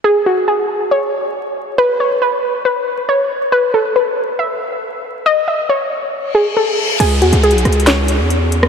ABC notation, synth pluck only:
X:1
M:4/4
L:1/8
Q:1/4=138
K:C#m
V:1 name="Synth pluck"
G F G2 c4 | B c B2 B2 c2 | B A B2 e4 | d e c3 G A2 |
G F G2 c4 |]